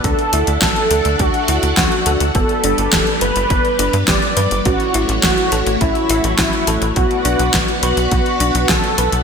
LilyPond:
<<
  \new Staff \with { instrumentName = "String machine" } { \time 4/4 \key d \major \tempo 4 = 104 <d' a' e'' fis''>1 | <g g' b' d''>1 | <a e' fis' cis''>1 | <b b' d'' fis''>1 | }
  \new Staff \with { instrumentName = "Analog synth lead" } { \time 4/4 \key d \major a'4 a'4 fis'4 fis'4 | a'4. b'4. d''4 | fis'4 fis'4 e'4 e'4 | fis'4. fis'4. a'4 | }
  \new Staff \with { instrumentName = "Synth arpeggio sound" } { \time 4/4 \key d \major d'16 r16 e'8 fis'8 a'16 r16 d'16 r16 e'8 fis'8 a'16 r16 | b16 r16 d'8 g'8 b'16 r16 b16 r16 d'8 g'8 b'16 r16 | cis'16 r16 e'8 fis'8 a'16 r16 cis'16 r16 e'8 fis'8 a'16 r16 | b16 r16 d'8 fis'8 b'16 r16 b16 r16 d'8 fis'8 b'16 r16 | }
  \new Staff \with { instrumentName = "Analog synth bass" } { \clef bass \time 4/4 \key d \major d,16 r16 d,16 d,16 a,,16 r16 d,16 d,16 d,16 r16 d,16 d,16 d,16 r16 d,16 d,16 | g,,16 r16 g,,16 g,,16 d,,16 r16 g,,16 g,,16 g,,16 r16 g,,16 g,16 g,,16 r16 g,16 g,,16 | a,,16 r16 a,,16 a,,16 fis,,16 r16 a,,16 a,,16 a,,16 r16 a,,16 a,,16 a,,16 r16 a,,16 a,,16 | b,,16 r16 b,,16 b,,16 a,,16 r16 b,,16 b,,16 b,,16 r16 b,,16 b,,16 b,,16 r16 b,,16 b,,16 | }
  \new DrumStaff \with { instrumentName = "Drums" } \drummode { \time 4/4 <hh bd>16 hh16 hh16 hh16 <hh bd sn>16 hh16 hh16 hh16 <hh bd>16 hh16 hh16 hh16 <hh bd sn>16 hh16 hh16 hh16 | <hh bd>16 hh16 hh16 hh16 <hh bd sn>16 hh16 hh16 hh16 <hh bd>16 hh16 hh16 hh16 <hh bd sn>16 hh16 hh16 hh16 | <hh bd>16 hh16 hh16 hh16 <hh bd sn>16 hh16 hh16 hh16 <hh bd>16 hh16 hh16 hh16 <hh bd sn>16 hh16 hh16 hh16 | <hh bd>16 hh16 hh16 hh16 <hh bd sn>16 hh16 hh16 hh16 <hh bd>16 hh16 hh16 hh16 <hh bd sn>16 hh16 hh16 hh16 | }
>>